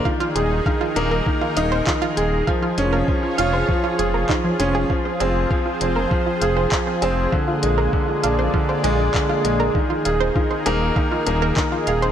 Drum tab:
HH |-x-x-x-x|-x-x-x-x|-x-x-x-x|-x-x-x-x|
CP |------x-|------x-|------x-|------x-|
BD |o-o-o-o-|o-o-o-o-|o-o-o-o-|o-o-o-o-|

HH |-x-x-x-x|
CP |------x-|
BD |o-o-o-o-|